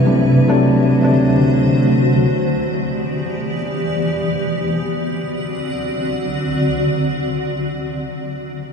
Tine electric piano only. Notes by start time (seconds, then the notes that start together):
0.04 C3 F#3 A3 D4
0.47 C3 F#3 A3 D4
1.02 C3 F#3 A3 D4